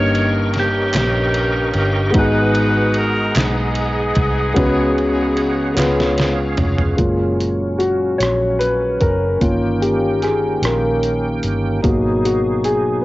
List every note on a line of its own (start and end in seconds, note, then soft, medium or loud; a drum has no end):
0.00 0.90 G1 medium
0.00 0.91 G2 medium
0.00 2.10 A#3 medium
0.00 2.11 C#4 medium
0.00 2.11 D#4 medium
0.00 2.12 G4 medium
0.00 0.91 A#4 medium
0.00 2.11 A#4 medium
0.00 0.28 C#5 loud
0.00 2.13 C#5 medium
0.00 4.53 D#5 medium
0.00 2.13 G5 medium
0.00 2.12 C#6 medium
0.15 ride bell soft
0.54 2.13 A#3 medium
0.54 2.13 C#4 medium
0.54 snare soft
0.54 ride bell soft
0.58 2.13 G4 loud
0.94 1.71 A#1 medium
0.94 snare loud
0.94 clap medium
0.94 ride bell medium
1.34 ride bell soft
1.74 2.12 G1 loud
1.74 ride bell soft
2.10 3.32 G#2 medium
2.10 4.51 G#3 medium
2.10 4.51 B3 medium
2.10 4.52 D#4 medium
2.10 ride bell medium
2.15 3.32 G#1 medium
2.15 3.34 D#4 medium
2.15 4.53 F#4 medium
2.15 6.95 G#4 medium
2.15 4.54 G#4 medium
2.15 5.75 F#5 medium
2.15 kick loud
2.19 3.34 F#4 medium
2.19 2.98 B4 loud
2.55 ride bell soft
2.94 3.37 A#4 loud
2.94 ride bell soft
3.35 4.13 B1 medium
3.35 6.15 B3 medium
3.35 6.15 D#4 medium
3.35 6.15 G#4 medium
3.35 snare loud
3.35 clap loud
3.35 ride bell medium
3.75 ride bell soft
4.15 4.54 C2 medium
4.15 kick medium
4.15 ride bell soft
4.54 5.74 C#2 medium
4.54 5.74 C#3 medium
4.54 5.73 G#3 medium
4.54 5.74 B3 medium
4.54 5.74 C#4 medium
4.54 5.78 F#4 medium
4.54 5.76 B4 loud
4.54 6.96 C#5 medium
4.54 kick loud
4.54 ride bell medium
4.98 ride bell soft
5.37 ride bell soft
5.74 6.54 C#2 medium
5.74 6.94 C#3 medium
5.74 6.95 G#3 medium
5.74 6.98 B3 medium
5.74 6.98 C#4 medium
5.74 6.96 F4 medium
5.74 6.99 B4 medium
5.74 clap loud
5.74 ride bell medium
5.79 6.98 F5 medium
5.79 snare medium
6.00 snare medium
6.18 snare medium
6.18 ride bell medium
6.57 6.95 F1 medium
6.57 floor tom loud
6.57 ride bell soft
6.78 floor tom loud
6.97 8.16 F#1 medium
6.97 9.37 A#2 soft
6.97 9.39 F#3 soft
6.97 9.36 G#3 soft
6.97 11.79 C#4 soft
6.97 9.37 F4 soft
6.97 kick loud
6.97 closed hi-hat medium
7.41 closed hi-hat soft
7.79 8.21 F#4 medium
7.79 closed hi-hat soft
8.18 8.97 A#1 medium
8.18 8.61 C#5 medium
8.18 closed hi-hat medium
8.23 cross-stick medium
8.59 8.97 B4 medium
8.59 closed hi-hat medium
9.00 9.39 F#1 medium
9.00 9.84 A#4 medium
9.00 kick medium
9.00 closed hi-hat soft
9.40 10.59 G1 medium
9.40 11.81 D#3 medium
9.40 11.79 A#3 soft
9.40 11.81 A#3 soft
9.40 11.80 C#4 soft
9.40 11.80 F4 medium
9.40 11.81 G5 medium
9.40 kick loud
9.40 closed hi-hat medium
9.82 10.23 G4 medium
9.82 closed hi-hat medium
10.22 10.64 G#4 medium
10.22 cross-stick soft
10.22 closed hi-hat soft
10.62 11.39 A#1 medium
10.62 11.81 A#4 medium
10.62 cross-stick loud
10.62 closed hi-hat medium
11.03 closed hi-hat medium
11.43 11.81 G1 medium
11.43 closed hi-hat soft
11.82 13.01 G#1 medium
11.82 13.05 B2 soft
11.82 13.05 F#3 medium
11.82 12.37 A#3 medium
11.82 12.37 B3 soft
11.82 13.05 D#4 medium
11.82 12.23 F#4 medium
11.82 13.05 G#4 medium
11.82 kick loud
11.82 closed hi-hat medium
12.25 12.66 F#4 medium
12.25 closed hi-hat medium
12.64 13.01 G#4 medium
12.64 closed hi-hat soft
13.01 13.05 B4 medium